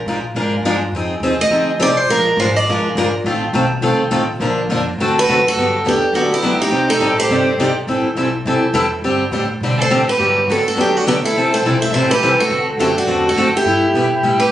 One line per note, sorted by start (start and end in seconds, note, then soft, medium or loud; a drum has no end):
0.06 0.34 A#2 medium
0.06 0.18 F3 medium
0.06 0.18 G#3 medium
0.06 0.18 D4 medium
0.06 0.18 F4 medium
0.06 0.18 A#4 medium
0.35 0.62 G#2 medium
0.35 0.54 F3 medium
0.35 0.55 G#3 medium
0.35 0.55 D4 medium
0.35 0.55 F4 medium
0.35 0.55 A#4 medium
0.63 0.91 G2 medium
0.63 0.75 F3 loud
0.63 0.75 G#3 loud
0.63 0.75 D4 medium
0.63 0.75 F4 loud
0.63 0.76 A#4 loud
0.92 1.19 F2 medium
0.92 1.13 F3 medium
0.96 1.14 C4 medium
0.96 1.14 D#4 medium
0.96 1.14 G#4 medium
1.20 1.49 D#2 medium
1.20 1.33 F3 medium
1.20 1.33 C4 medium
1.20 1.33 D#4 medium
1.24 1.34 G#4 medium
1.41 1.67 D#5 loud
1.50 1.78 D2 medium
1.50 1.70 F3 medium
1.50 1.70 C4 medium
1.50 1.70 D#4 medium
1.50 1.70 G#4 medium
1.79 2.07 C2 medium
1.79 1.90 F3 loud
1.79 1.90 C4 loud
1.79 1.91 D#4 loud
1.79 1.91 G#4 loud
1.79 1.97 D5 loud
1.97 2.09 C5 medium
2.09 2.36 A#1 medium
2.09 2.28 F3 medium
2.09 2.28 G#3 medium
2.09 2.29 D4 medium
2.09 2.29 F4 medium
2.09 2.39 A#4 loud
2.09 2.29 A#4 medium
2.37 2.65 G#1 loud
2.37 2.49 F3 medium
2.37 2.49 G#3 medium
2.37 2.49 D4 medium
2.37 2.50 F4 medium
2.37 2.49 A#4 medium
2.37 2.56 C5 medium
2.56 3.13 D5 medium
2.67 2.95 A#1 medium
2.67 2.87 F3 medium
2.67 2.87 G#3 medium
2.67 2.87 D4 medium
2.67 2.87 F4 medium
2.67 2.88 A#4 medium
2.95 3.11 G1 medium
2.95 3.07 F3 medium
2.95 3.07 G#3 medium
2.95 3.07 D4 medium
2.95 3.07 F4 loud
2.95 3.07 A#4 loud
3.12 muted upright bass stroke soft
3.24 3.52 A1 medium
3.24 3.44 D#3 medium
3.24 3.44 A3 medium
3.24 3.44 C4 medium
3.24 3.44 F4 medium
3.24 3.45 A4 medium
3.53 3.81 B1 loud
3.53 3.64 D#3 medium
3.53 3.64 A3 medium
3.53 3.65 C4 medium
3.53 3.64 F4 medium
3.53 3.65 A4 medium
3.81 4.10 C2 medium
3.81 4.01 D#3 medium
3.81 4.01 A3 medium
3.81 4.02 C4 medium
3.81 4.01 F4 medium
3.81 4.02 A4 medium
4.11 4.39 A1 medium
4.11 4.22 D#3 loud
4.11 4.22 A3 loud
4.11 4.22 C4 loud
4.11 4.22 F4 loud
4.11 4.22 A4 loud
4.40 4.68 A#1 medium
4.40 4.59 D3 medium
4.40 4.60 F3 medium
4.40 4.60 A#3 medium
4.40 4.60 D4 medium
4.40 4.60 A#4 medium
4.69 4.97 F2 medium
4.69 4.80 D3 medium
4.69 4.80 F3 medium
4.69 4.80 A#3 medium
4.69 4.81 D4 medium
4.69 4.80 A#4 medium
4.98 5.26 D2 medium
4.98 5.18 D3 medium
4.98 5.18 A3 medium
4.98 5.18 C4 medium
4.98 5.19 F#4 medium
4.98 5.18 A4 medium
5.18 5.43 F#4 medium
5.18 5.44 B4 loud
5.28 5.55 F#2 medium
5.28 5.38 D3 medium
5.28 5.38 A3 loud
5.28 5.39 C4 medium
5.28 5.39 F#4 loud
5.28 5.39 A4 loud
5.47 5.83 F#4 medium
5.47 5.88 A4 loud
5.56 5.84 G2 medium
5.56 5.76 D3 medium
5.56 5.76 F#3 medium
5.56 5.76 B3 medium
5.56 5.76 D4 medium
5.56 5.76 G4 medium
5.85 6.12 E2 medium
5.85 5.95 D3 medium
5.85 5.96 F#3 medium
5.85 5.96 B3 medium
5.85 6.12 D4 medium
5.85 5.96 D4 medium
5.85 5.96 G4 medium
5.85 6.14 G4 medium
6.13 6.41 D2 medium
6.13 6.33 D3 medium
6.13 6.34 F#3 medium
6.13 6.34 B3 medium
6.13 6.29 D4 medium
6.13 6.34 D4 medium
6.13 6.32 F#4 medium
6.13 6.34 G4 medium
6.30 6.57 B3 medium
6.30 6.59 E4 medium
6.42 6.71 C#2 medium
6.42 6.53 D3 medium
6.42 6.53 F#3 medium
6.42 6.54 B3 medium
6.42 6.54 D4 loud
6.42 6.54 G4 loud
6.59 6.86 D#4 medium
6.59 6.90 G4 loud
6.70 7.00 C2 medium
6.70 6.90 C3 medium
6.70 6.90 G3 medium
6.70 6.90 C4 medium
6.70 6.90 D#4 medium
6.70 6.90 G4 medium
6.70 6.91 D5 medium
6.87 7.15 D#4 medium
6.87 7.16 A4 loud
7.00 7.28 A1 medium
7.00 7.11 C3 medium
7.00 7.11 G3 medium
7.00 7.11 C4 medium
7.00 7.11 D#4 medium
7.00 7.12 G4 medium
7.00 7.11 D5 loud
7.17 7.55 G4 medium
7.17 7.57 C5 loud
7.29 7.57 G1 medium
7.29 7.49 C3 medium
7.29 7.49 G3 medium
7.29 7.49 C4 medium
7.29 7.49 D#4 medium
7.29 7.50 G4 medium
7.29 7.50 D5 medium
7.58 7.86 C2 medium
7.58 7.70 C3 medium
7.58 7.70 G3 loud
7.58 7.70 C4 medium
7.58 7.70 D#4 medium
7.58 7.70 G4 loud
7.58 7.70 D5 loud
7.87 8.03 A1 medium
7.87 8.07 E3 medium
7.87 8.07 G3 medium
7.87 8.07 C4 medium
7.87 8.07 E4 medium
7.87 8.08 A4 medium
8.04 muted upright bass stroke soft
8.15 8.44 B1 medium
8.15 8.27 E3 medium
8.15 8.27 G3 medium
8.15 8.27 C4 medium
8.15 8.28 E4 medium
8.15 8.28 A4 medium
8.45 8.73 C2 medium
8.45 8.64 E3 medium
8.45 8.65 G3 medium
8.45 8.65 C4 medium
8.45 8.65 E4 medium
8.45 8.66 A4 medium
8.73 9.01 E2 medium
8.73 8.84 E3 loud
8.73 8.85 G3 loud
8.73 8.85 C4 loud
8.73 8.85 E4 loud
8.73 8.85 A4 loud
9.02 9.30 G2 medium
9.02 9.23 D3 medium
9.02 9.23 G3 medium
9.02 9.23 C4 medium
9.02 9.23 D4 medium
9.02 9.23 G4 medium
9.31 9.60 A2 loud
9.31 9.43 D3 medium
9.31 9.43 G3 medium
9.31 9.43 C4 medium
9.31 9.43 D4 medium
9.31 9.43 G4 medium
9.61 9.89 B2 medium
9.61 9.81 D3 medium
9.61 9.81 G3 medium
9.61 9.81 C4 medium
9.61 9.81 D4 medium
9.61 9.81 G4 medium
9.77 10.04 A4 medium
9.82 10.09 C5 medium
9.89 10.18 A2 medium
9.89 10.01 D3 medium
9.89 10.01 G3 medium
9.89 10.01 C4 loud
9.89 10.01 D4 loud
9.89 10.01 G4 loud
10.07 10.45 G4 medium
10.07 10.50 B4 medium
10.19 10.47 G2 medium
10.19 10.38 D3 medium
10.19 10.38 F#3 medium
10.19 10.38 B3 medium
10.19 10.38 D4 medium
10.19 10.38 G4 medium
10.47 10.75 F#2 medium
10.47 10.59 D3 medium
10.47 10.59 F#3 medium
10.47 10.59 B3 medium
10.47 10.60 D4 medium
10.47 10.63 F#4 medium
10.47 10.60 G4 medium
10.52 10.65 A4 medium
10.66 10.76 F#4 medium
10.66 10.77 A4 medium
10.76 11.03 E2 medium
10.76 10.96 D3 medium
10.76 10.96 F#3 medium
10.76 10.96 B3 medium
10.76 10.94 D4 medium
10.76 10.96 D4 medium
10.76 10.96 G4 medium
10.81 10.97 G4 medium
10.94 11.05 D4 medium
10.94 11.07 F#4 medium
11.04 11.33 D2 medium
11.04 11.17 D3 loud
11.04 11.17 F#3 medium
11.04 11.17 B3 loud
11.04 11.13 D4 medium
11.04 11.17 D4 loud
11.08 11.13 G4 medium
11.08 11.17 G4 medium
11.23 11.49 E4 medium
11.23 11.53 A4 medium
11.33 11.61 C2 medium
11.33 11.54 C3 medium
11.33 11.54 E3 medium
11.33 11.54 G3 medium
11.37 11.55 C4 medium
11.37 11.55 E4 medium
11.37 11.55 A4 medium
11.52 11.79 A4 medium
11.52 11.82 C5 loud
11.62 11.90 B1 medium
11.62 11.75 C3 medium
11.66 11.75 E3 medium
11.66 11.75 G3 medium
11.66 11.75 C4 medium
11.66 11.75 E4 medium
11.66 11.75 A4 medium
11.81 11.92 C5 medium
11.81 11.92 E5 loud
11.91 12.19 A1 medium
11.91 12.12 C3 medium
11.91 12.12 G3 medium
11.91 12.12 C4 medium
11.91 12.08 A4 medium
11.91 12.09 C5 loud
11.95 12.13 E3 medium
11.95 12.12 E4 medium
11.95 12.13 A4 medium
12.09 12.36 G4 medium
12.09 12.39 B4 medium
12.21 12.49 C2 medium
12.21 12.32 C3 medium
12.21 12.32 E3 loud
12.21 12.32 G3 loud
12.21 12.32 C4 loud
12.21 12.32 E4 loud
12.21 12.32 A4 loud
12.38 12.65 F#4 medium
12.38 12.66 A4 loud
12.49 12.77 D2 medium
12.49 12.69 D3 medium
12.49 12.69 A3 medium
12.49 12.69 C4 medium
12.49 12.69 F#4 medium
12.49 12.69 A4 medium
12.78 13.06 F#2 medium
12.78 12.89 D3 medium
12.78 12.90 A3 medium
12.78 12.90 C4 medium
12.78 12.94 E4 medium
12.78 12.90 F#4 medium
12.78 12.95 G4 medium
12.78 12.90 A4 medium
12.96 13.24 D4 medium
12.96 13.29 F#4 medium
13.07 13.35 E2 medium
13.07 13.26 D3 medium
13.07 13.27 A3 medium
13.07 13.26 C4 medium
13.07 13.27 F#4 medium
13.07 13.27 A4 medium
13.28 13.52 F#4 medium
13.28 13.52 A4 loud
13.36 13.64 F#2 medium
13.36 13.47 D3 loud
13.36 13.47 A3 medium
13.36 13.48 C4 loud
13.36 13.48 F#4 loud
13.36 13.47 A4 loud
13.55 14.37 E4 medium
13.55 14.49 G4 medium
13.65 13.93 G2 medium
13.65 13.85 G3 medium
13.65 13.85 B3 medium
13.65 13.85 E4 medium
13.65 13.85 G4 medium
13.93 14.21 B2 medium
13.93 14.05 G3 medium
13.93 14.05 B3 medium
13.93 14.06 E4 medium
13.93 14.06 G4 medium
14.22 14.50 A2 medium
14.22 14.42 G3 medium
14.22 14.42 B3 medium
14.22 14.42 E4 medium
14.22 14.43 G4 medium
14.39 14.52 G4 medium
14.39 14.52 B4 medium